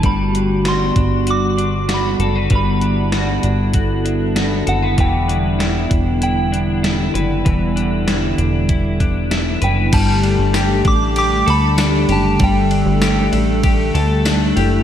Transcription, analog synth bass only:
\new Staff \with { instrumentName = "Analog synth bass" } { \clef bass \time 4/4 \key g \major \tempo 4 = 97 g,,4. g,,2 fis,,8 | g,,4. g,,2 fis,,8 | e,,4. e,,2 fis,,8 | e,,4. e,,2 fis,,8 |
g,,8. g,,8. a,,4 d,4 fis,,8 | g,,8. g,,8. a,,4 d,4 fis,,8 | }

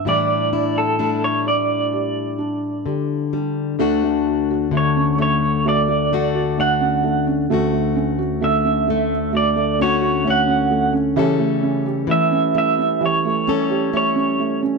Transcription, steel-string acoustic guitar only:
\new Staff \with { instrumentName = "Steel-string acoustic guitar" } { \time 4/4 \key d \major \tempo 4 = 65 << { <g d' e'>8 e'8 <g d' e'>2~ <g d' e'>8 g8 | <a d' fis'>4. a4 <a d' fis'>8 d'4 | <a fis'>4. a4 <a cis' fis'>8 cis'4 | <g cis' a'>4. g4 <g cis' a'>8 cis'4 | } \\ { a,2. d4 | d,4 d2. | d,4 d2. | cis4 e2. | } >> }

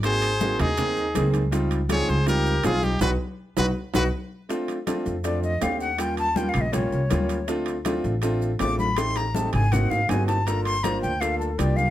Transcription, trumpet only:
\new Staff \with { instrumentName = "Trumpet" } { \time 4/4 \key f \mixolydian \tempo 4 = 161 c''4. aes'2 r8 | r4 des''8 c''8 bes'4 aes'8 g'8 | b'8 r4 b'8 r8 b'8 r4 | r1 |
r1 | r1 | r1 | r1 | }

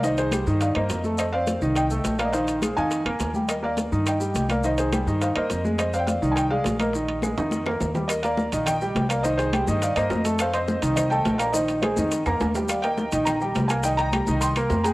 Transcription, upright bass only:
\new Staff \with { instrumentName = "Upright bass" } { \clef bass \time 4/4 \key ees \major \tempo 4 = 209 c,4. g,4 g,8 f,4~ | f,4. c,4. bes,,4~ | bes,,4. f,4 f,8 ees,4~ | ees,4. g,4. c,4~ |
c,4. g,4 g,8 f,4~ | f,4. c,4. bes,,4~ | bes,,4. f,4. ees,4~ | ees,4. bes,,4. c,4~ |
c,4. g,4 g,8 f,4~ | f,4. c,4. bes,,4~ | bes,,4. f,4 f,8 ees,4~ | ees,4. bes,,4. c,4~ |
c,4. c,4. f,4 | }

